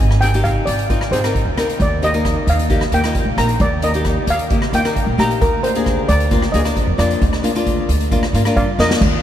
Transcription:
Already playing: G#5
0.00 G#1, kick
0.11 cross-stick
0.21 C4 D#4 G#4 G5, closed hi-hat
0.34 C4 D#4 G4, closed hi-hat
0.44 F5, kick, closed hi-hat
0.65 G#1 D5, closed hi-hat
0.79 closed hi-hat
0.90 C4 D#4 F4, kick, closed hi-hat
1.01 cross-stick
1.11 G#1 C4 D#4 G#4 C5, closed hi-hat
1.24 C4 D#4 A#4, cross-stick, closed hi-hat
1.35 kick, closed hi-hat
1.45 D#2
1.56 D2 C4 D#4 A#4, cross-stick, closed hi-hat
1.69 closed hi-hat
1.80 D#2 D5, kick, closed hi-hat
2.02 A#3 D#4 G4 D#5, closed hi-hat
2.14 A#3 D#4 A#4, closed hi-hat
2.25 kick, cross-stick, closed hi-hat
2.47 D#2 F5, closed hi-hat
2.59 closed hi-hat
2.70 A#3 D#4 G4, kick, closed hi-hat
2.81 cross-stick
2.91 D#2 A#3 D#4 G4 G5, closed hi-hat
3.04 A#3 D#4 F4, cross-stick, closed hi-hat
3.15 kick, closed hi-hat
3.25 A#1
3.37 A#1 A#3 D#4 A#4 A#5, cross-stick, closed hi-hat
3.49 closed hi-hat
3.60 D#2 D5, kick, closed hi-hat
3.82 A#3 D#4 A#4 D#5, closed hi-hat
3.94 A#3 D#4 G4, closed hi-hat
4.05 kick, cross-stick, closed hi-hat
4.27 D#2 F5, closed hi-hat
4.39 closed hi-hat
4.50 A#3 D#4 G4, kick, closed hi-hat
4.62 cross-stick
4.73 D#2 A#3 D#4 F4 G5, closed hi-hat
4.85 A#3 D#4 A#4, cross-stick, closed hi-hat
4.96 kick, closed hi-hat
5.06 A#1
5.18 A#1 A#3 D#4 G4 A#5, cross-stick, closed hi-hat
5.31 closed hi-hat
5.41 D2 A#4, kick, closed hi-hat
5.63 A#3 D4 F4 C5, closed hi-hat
5.75 A#3 D4 G#4, closed hi-hat
5.86 kick, cross-stick, closed hi-hat
6.09 D2 D5, closed hi-hat
6.20 closed hi-hat
6.31 A#3 D4 F4, kick, closed hi-hat
6.42 cross-stick
6.52 D2 A#3 D4 G#4 D#5, closed hi-hat
6.64 A#3 D4 F4, cross-stick, closed hi-hat
6.76 kick, closed hi-hat
6.87 F2
6.98 F2 A#3 D4 F4 D5, cross-stick, closed hi-hat
7.11 closed hi-hat
7.22 D2, kick, closed hi-hat
7.33 cross-stick
7.43 A#3 D4 F4, closed hi-hat
7.55 A#3 D4 F4, closed hi-hat
7.67 kick, closed hi-hat
7.89 D2, closed hi-hat
8.00 closed hi-hat
8.11 A#3 D4 F4, kick, closed hi-hat
8.23 cross-stick
8.33 G#2 A#3 D4 F4, closed hi-hat
8.45 A#3 D4 F4, cross-stick, closed hi-hat
8.56 G2 D5 F5, kick, closed hi-hat
8.79 F2 A#3 D4 F4 A#4 D#5, snare
8.91 snare
9.01 D#2, kick, crash

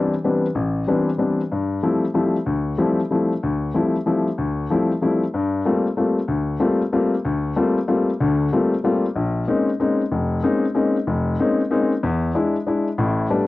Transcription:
Already playing: E3 G3 B3 C4 D4
0.24 E3 G3 B3 C4 D4
0.55 A1
0.87 E3 G3 B3 C4 D4
1.18 E3 G3 B3 C4 D4
1.52 G2
1.83 F3 G3 A3 C4 E4
2.14 F3 G3 A3 C4 E4
2.46 D2
2.78 F3 G3 A3 C4 E4
3.11 F3 G3 A3 C4 E4
3.43 D2
3.74 F3 G3 A3 C4 E4
4.06 F3 G3 A3 C4 E4
4.38 D2
4.70 F3 G3 A3 C4 E4
5.02 F3 G3 A3 C4 E4
5.34 G2
5.65 G3 A3 A#3 C4 F4
5.97 G3 A3 A#3 C4 F4
6.28 D2
6.60 G3 A3 A#3 C4 F4
6.92 G3 A3 A#3 C4 F4
7.25 D2
7.56 G3 A3 A#3 C4 F4
7.88 G3 A3 A#3 C4 F4
8.20 D2 D3
8.53 G3 A3 A#3 C4 F4
8.84 G3 A3 A#3 C4 F4
9.15 A#1
9.47 G#3 A#3 C4 C#4 D#4
9.80 G#3 A#3 C4 C#4 D#4
10.11 F1
10.43 G#3 A#3 C4 C#4 D#4
10.74 G#3 A#3 C4 C#4 D#4
11.07 F1
11.39 G#3 A#3 C4 C#4 D#4
11.71 G#3 A#3 C4 C#4 D#4
12.03 E2
12.34 G#3 D4 E4
12.67 G#3 D4 E4
12.98 A1 A2
13.30 G3 A3 B3 D4

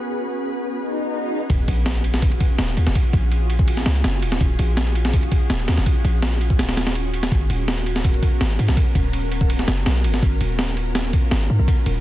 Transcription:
Already playing: B3 C#4 F#4 G#4 B4
0.77 swell
1.50 D#1 C#4 F4 F#4 G#4, kick, ride, sub drop
1.68 A#1, ride
1.86 snare, ride
1.95 ride
2.04 ride
2.14 snare
2.22 kick, ride
2.32 ride
2.40 kick, ride
2.59 D#1, snare, ride
2.68 ride
2.77 D#2, ride
2.87 F#1, snare
2.95 kick, ride
3.13 A#1, kick, ride
3.32 ride
3.50 ride
3.59 kick
3.68 ride
3.77 snare
3.86 C#2, snare, ride
3.96 ride
4.04 F#1, snare, ride
4.22 D#1, ride
4.32 snare
4.41 D#1, kick, ride
4.59 A#1, ride
4.77 snare, ride
4.87 ride
4.95 ride
5.05 snare
5.13 kick, ride
5.23 ride
5.32 kick, ride
5.50 D#1, snare, ride
5.59 ride
5.68 D#2, snare, ride
5.78 F#1, snare
5.86 kick, ride
6.05 A#1, ride
6.22 snare, ride
6.41 ride
6.50 kick
6.59 D#1, snare, ride
6.69 snare, ride
6.77 snare, ride
6.87 snare, ride
6.95 ride
7.14 ride
7.23 snare, ride
7.32 G#1 B3 A#4, kick, ride
7.50 D#1, ride
7.68 snare, ride
7.78 ride
7.86 ride
7.96 snare
8.04 kick, ride
8.14 ride
8.23 kick, ride
8.41 G#1, snare, ride
8.50 ride
8.59 G#2, ride
8.68 B1, snare
8.77 kick, ride
8.95 D#1, kick, ride
9.13 ride
9.32 ride
9.41 kick
9.50 ride
9.59 snare
9.68 F#1, snare, ride
9.77 ride
9.86 B1, snare, ride
10.04 G#1, ride
10.14 snare
10.22 G#1 F4, kick, ride
10.41 D#1, ride
10.59 snare, ride
10.68 ride
10.77 ride
10.95 snare, ride
11.05 ride
11.13 kick, ride
11.31 G#1, snare, ride
11.41 ride
11.50 G#2
11.59 B1
11.68 kick, ride
11.86 D#1, ride

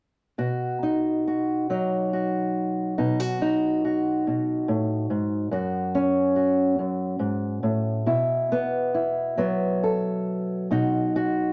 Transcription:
0.38 B2 F#4
0.83 D#4
1.27 F#4
1.70 F#3 D#4
2.13 F#4
2.98 B2 D#4
3.20 F#4
3.42 D#4
3.85 F#4
4.27 B2
4.68 A2
5.10 G#2
5.51 F#2 F#4
5.95 C#4
6.36 F#4
6.79 F#2
7.19 G#2
7.63 A2
8.06 B2 E4
8.52 B3
8.94 E4
9.37 F#3 B3
9.83 A4
10.71 B2 D#4 F#4
11.16 F#4

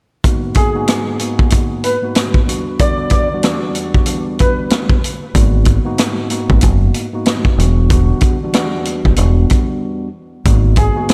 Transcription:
0.24 G#2 A#3 B3 D#4 F#4, kick, closed hi-hat
0.55 G#4, kick, closed hi-hat
0.74 G#2 A#3 B3 D#4 F#4
0.88 cross-stick, snare, closed hi-hat
1.19 G#2 A#3 B3 D#4 F#4, closed hi-hat
1.39 kick
1.50 kick, closed hi-hat
1.84 B4, closed hi-hat
2.02 G#2 A#3 B3 D#4 F#4
2.15 cross-stick, snare, closed hi-hat
2.34 kick
2.46 E2 G3 B3 D4 F#4, closed hi-hat
2.79 E2 G3 B3 D4 F#4 D5, kick, closed hi-hat
3.10 D5, kick, closed hi-hat
3.32 E2 G3 B3 D4 F#4
3.43 E2 G3 B3 D4 F#4, cross-stick, snare, closed hi-hat
3.75 closed hi-hat
3.94 kick
4.06 E2 G3 B3 D4 F#4, closed hi-hat
4.39 B4, kick, closed hi-hat
4.70 cross-stick, snare, closed hi-hat
4.90 kick
5.04 closed hi-hat
5.35 G#1 G#2 A#3 B3 D#4 F#4, kick, closed hi-hat
5.65 kick, closed hi-hat
5.84 G#2 A#3 B3 D#4 F#4
5.98 cross-stick, snare, closed hi-hat
6.30 G#2 A#3 B3 D#4 F#4, closed hi-hat
6.50 G#1, kick
6.61 F#1, kick, closed hi-hat
6.94 closed hi-hat
7.13 G#2 A#3 B3 D#4 F#4
7.26 cross-stick, snare, closed hi-hat
7.45 kick
7.57 E1 E2 G3 B3 D4 F#4, closed hi-hat
7.90 E2 G3 B3 D4 F#4, kick, closed hi-hat
8.21 kick, closed hi-hat
8.43 E2 G3 B3 D4 F#4
8.53 E2 G3 B3 D4 F#4, cross-stick, snare, closed hi-hat
8.85 closed hi-hat
9.05 F#1, kick
9.16 E1 E2 G3 B3 D4 F#4, closed hi-hat
9.50 kick, closed hi-hat
10.45 G#1 G#2 A#3 B3 D#4 F#4, kick, closed hi-hat
10.76 G#4, kick, closed hi-hat
10.95 G#2 A#3 B3 D#4 F#4
11.09 cross-stick, snare, closed hi-hat

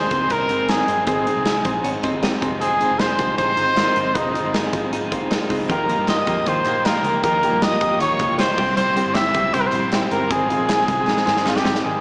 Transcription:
Already playing: D#3 G#3 C4 D#4 G#4 C5 C6
0.11 C#2 G#3 C4 D#4 G#4, kick, closed hi-hat
0.30 C2 G#2 D#3 G#3 C4 C#4 D#4 G#4 A#4 A#5, kick, closed hi-hat
0.41 D#4
0.49 G1 G#3 C4 D#4 G#4, closed hi-hat
0.68 D#3 G#3 C4 D#4 G#4 G#5, snare, closed hi-hat
0.87 G1 G#3 C4 D#4 G#4, closed hi-hat
1.06 G#1 G#2 D#3 G#3 C4 D#4 G#4 G#5, kick, closed hi-hat
1.26 G#3 C4 D#4 G#4, closed hi-hat
1.37 C2
1.45 D#3 G#3 C4 D#4 G#4, snare, closed hi-hat
1.64 A#1 G#3 C4 D#4 G#4, kick, closed hi-hat
1.83 G#1 G#2 D#3 G#3 C4 C#4 D#4 G#4, closed hi-hat
1.94 D#4
2.03 G1 G#3 C4 D#4 G#4 D#5, kick, closed hi-hat
2.22 D#3 G#3 C4 D#4 G4 G5, snare, closed hi-hat
2.41 F1 D#3 G#3 C4 D#4 F4 G#4 G#5, kick, closed hi-hat
2.61 F2 C3 D#3 G#3 C4 D#4 G#4 G#5, closed hi-hat
2.80 D#3 G#3 C4 D#4 F4 G#4, closed hi-hat
2.91 F1
2.99 C3 D#3 G#3 D#4 F4 G#4 C5 C6, snare, closed hi-hat
3.18 C2 D#3 G#3 C4 D#4 F4 G4, kick, snare, closed hi-hat
3.38 A#1 F2 C3 D#3 G#3 D#4 F4 G#4 C5 C6, kick, closed hi-hat
3.56 G#1 D#3 G#3 C4 D#4 F4 G#4, closed hi-hat
3.75 C3 D#3 G#3 D#4 F4 A#4, snare, closed hi-hat
3.79 D#4
3.95 G1 D#3 G#3 C4 D#4 F4 G#4, closed hi-hat
4.14 F1 F2 C3 D#3 G#3 C4 D#4 F4 G#4 D#5, kick, closed hi-hat
4.34 G#3 C4 D#4 F4 G#4, closed hi-hat
4.38 D#3
4.44 G1
4.52 C3 D#3 G#3 D#4 F4 G#4, snare, closed hi-hat
4.57 D#4
4.72 G#1 D#3 G#3 C4 D#4 F4 G#4, kick, closed hi-hat
4.92 F2 C3 D#3 G#3 D#4 F4 G#4, closed hi-hat
5.11 D#3 G#3 C4 D#4 F4 G#4, kick, closed hi-hat
5.30 C3 D#3 G#3 D#4 F4 G#4, snare, closed hi-hat
5.50 C#2 D#3 G#3 C4 D#4 F4 G#4, kick, open hi-hat
5.69 D#2 D#3 F3 A#3 D#4 F4 G4 A#4 A#5, kick, closed hi-hat
5.89 A#3 D#4 F4 G4 A#4, closed hi-hat
5.98 G2
6.07 F3 A#3 D#4 F4 G4 D#5 D#6, snare, clap, closed hi-hat
6.18 G4
6.27 F2 A#3 D#4 F4 G4, kick, snare, closed hi-hat
6.46 D#2 D#3 F3 A#3 D#4 F4 G4 C5 C6, kick, closed hi-hat
6.65 A#1 A#3 D#4 F4 G4, clap, closed hi-hat
6.85 F3 A#3 D#4 F4 G4 A#4 A#5, snare, clap, closed hi-hat
7.03 C#2 A#3 D#4 F4 G4, closed hi-hat
7.23 D#2 D#3 F3 A#3 D#4 F4 G4 A#4 A#5, kick, closed hi-hat
7.43 A#3 D#4 F4 G4, closed hi-hat
7.52 G2
7.62 F3 A#3 D#4 F4 G4 D#5 D#6, snare, clap, closed hi-hat
7.66 G4
7.80 F2 D#4 F4 G4, kick, closed hi-hat
7.85 A#3
7.99 D#2 D#3 F3 A#3 D#4 F4 G4 C#5 C#6, closed hi-hat
8.18 C#2 D#4 F4 G4, kick, clap, closed hi-hat
8.22 A#3
8.37 F3 A#3 D#4 F4 G4 C5 C6, snare, clap, closed hi-hat
8.42 D#4 G4
8.57 C2 G3 C4 E4 G4, kick, crash
8.77 C3 G3 C4 E4 G4 C5 C6, closed hi-hat
8.96 C4 E4 G4, closed hi-hat
9.06 G1
9.14 G3 C4 E4 G4 E5 E6, snare, clap, closed hi-hat
9.19 G4
9.34 C#2 C4 E4 G4, kick, closed hi-hat
9.54 C2 C3 G3 C4 E4 G4 C5 C6, kick, closed hi-hat
9.61 A#4 A#5
9.67 C5 C6
9.72 A#1 C4 E4 G4, clap, closed hi-hat
9.92 G3 C4 E4 G4, snare, clap, closed hi-hat
10.11 G1 C4 E4 G4 A#4 A#5, closed hi-hat
10.30 G#1 G#2 D#3 G#3 C4 D#4 G#4 G#5, kick, closed hi-hat
10.49 G#3 C4 D#4 F4 G#4, closed hi-hat
10.60 A#1
10.68 G#3 C4 D#4 G#4, snare, clap, closed hi-hat
10.88 C2 G#3 C4 D#4 G#4, kick, closed hi-hat
11.06 A#1 G#2 D#3 G#3 C4 D#4 G#4, snare
11.17 snare
11.26 G#1 G#3 C4 D#4 G#4, snare, clap
11.37 snare
11.45 G#3 C4 D#4 F4 G#4, snare, clap
11.56 G4, snare
11.65 G1 G#3 C4 D#4 G#4, snare
11.75 snare
11.84 G#1 D#3 G#3 C4 D#4 G#4 A#4

